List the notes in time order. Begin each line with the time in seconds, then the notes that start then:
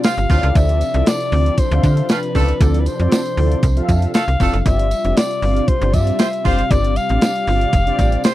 Already playing: C3 G3 F4
0.04 C4 D4 F4 F5, snare, closed hi-hat, tambourine
0.18 G1, closed hi-hat
0.29 D2 F3 A3 C4 D4 E4 F4 A4 C#5, kick, open hi-hat, tambourine
0.36 D5
0.43 C#2, closed hi-hat
0.55 D2 E5, kick, closed hi-hat, tambourine
0.69 closed hi-hat
0.81 closed hi-hat, tambourine
0.94 C2 C4 E4 F4 A4 D5, closed hi-hat
1.06 D5, snare, closed hi-hat, tambourine
1.20 closed hi-hat
1.32 D2 C4 E4 F4 A4 D5, open hi-hat
1.46 closed hi-hat
1.57 C5, kick, closed hi-hat, tambourine
1.71 D2 C4 F4 A4 E5 F5, closed hi-hat
1.83 D3, kick, closed hi-hat, tambourine
1.97 closed hi-hat
2.09 A3 C4 F4 B4, snare, closed hi-hat, tambourine
2.23 closed hi-hat
2.35 C#2 A3 C4 E4 F4 A4 D5, kick, open hi-hat, tambourine
2.48 closed hi-hat
2.61 D2 C4 E4 F4 A4 D5, kick, closed hi-hat, tambourine
2.74 closed hi-hat
2.80 B4
2.86 C5, closed hi-hat, tambourine
3.00 F2 C4 E4 F4 A4 D5, closed hi-hat
3.12 snare, closed hi-hat, tambourine
3.26 closed hi-hat
3.37 D2 C4 E4 F4 A4 D5, open hi-hat
3.52 closed hi-hat
3.63 C2, kick, closed hi-hat, tambourine
3.76 C4 F4 A4 E5 F5, closed hi-hat
3.89 F2, kick, closed hi-hat, tambourine
4.02 closed hi-hat
4.14 A3 F4 A4 F5, snare, closed hi-hat, tambourine
4.28 C2, closed hi-hat
4.40 F1 A3 C4 E4 F4 A4 D5, kick, open hi-hat, tambourine
4.53 F#1, closed hi-hat
4.59 F5
4.66 G1 C3 G3 C4 D4 F4 G4 D5 E5, kick, closed hi-hat, tambourine
4.79 closed hi-hat
4.91 closed hi-hat, tambourine
5.05 F1 C4 D4 F4 G4 D5, closed hi-hat
5.17 D5, snare, closed hi-hat, tambourine
5.31 closed hi-hat
5.42 G1 C4 D4 F4 G4 F5, open hi-hat, tambourine
5.56 closed hi-hat
5.68 C5, kick, closed hi-hat
5.82 G1 C4 D4 F4 G4 D5, closed hi-hat
5.94 G2 E5, kick, closed hi-hat, tambourine
6.07 closed hi-hat
6.19 F4 G4 C5, snare, closed hi-hat, tambourine
6.33 closed hi-hat
6.45 F#1 C4 D4 F4 G4 C5 D5 F5, kick, open hi-hat, tambourine
6.59 closed hi-hat
6.70 G1 C4 D4 F4 G4 D5, kick, closed hi-hat, tambourine
6.84 closed hi-hat
6.96 F5, closed hi-hat, tambourine
7.09 A1 C4 D4 F4 G4 D5, closed hi-hat
7.21 snare, closed hi-hat, tambourine
7.36 closed hi-hat
7.47 G1 C4 D4 F4 G4 D5, open hi-hat, tambourine
7.61 closed hi-hat
7.73 F1, kick, closed hi-hat, tambourine
7.86 C4 D4 F4 G4 D5, closed hi-hat
7.99 A1, kick, closed hi-hat, tambourine
8.12 closed hi-hat
8.24 F4 G4 C5, snare, closed hi-hat, tambourine